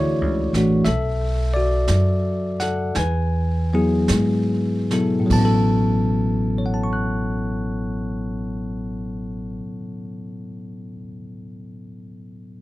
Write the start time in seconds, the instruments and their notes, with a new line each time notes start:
Already playing: upright bass D2, tine electric piano E3 A3 D4 E4 F#4 C#5 D5
0.21 upright bass C#2
0.53 upright bass A1, tine electric piano E3 A3 D4 F#4, snare
0.85 upright bass B1, tine electric piano A4 E5, brush sweep, snare
1.54 tine electric piano F#4 D5
1.88 upright bass F#2, snare, hi-hat pedal
2.60 tine electric piano A4 F#5, snare
2.95 upright bass E2, tine electric piano B4 G#5, brush sweep, snare
3.73 tine electric piano F#3 B3 E4 G#4
4.08 upright bass G#2, snare, hi-hat pedal
4.91 tine electric piano B2 F#3 B3 E4 A4, snare
5.20 tine electric piano A2
5.26 tine electric piano F#3, kick, crash
5.30 upright bass A1, tine electric piano B3 A5
5.39 tine electric piano C#4
5.45 tine electric piano A4
6.58 tine electric piano C#5
6.66 tine electric piano F#5
6.74 tine electric piano A5
6.84 tine electric piano C#6
6.93 tine electric piano F#6